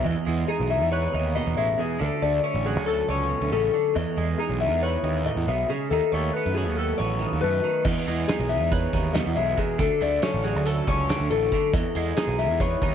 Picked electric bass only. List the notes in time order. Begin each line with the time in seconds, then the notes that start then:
0.06 E2
0.27 E2
0.60 B1
0.82 E2
1.14 D#2
1.47 E2
1.57 A1
2.01 D2
2.23 D2
2.55 A1
2.77 D2
3.09 C#2
3.41 D2
3.52 A1
3.96 E2
4.17 E2
4.49 B1
4.71 E2
5.03 D#2
5.36 E2
5.47 B1
5.91 D#2
6.13 D#2
6.46 F#2
6.68 D#2
7.00 A1
7.32 D#2
7.44 F#2
7.85 E2
8.08 E2
8.39 B1
8.61 E2
8.93 D#2
9.26 E2
9.37 B1
9.80 D2
10.02 D2
10.34 A1
10.56 D2
10.87 C#2
11.20 D2
11.31 A1
11.74 E2
11.96 E2
12.28 B1
12.50 E2
12.82 D#2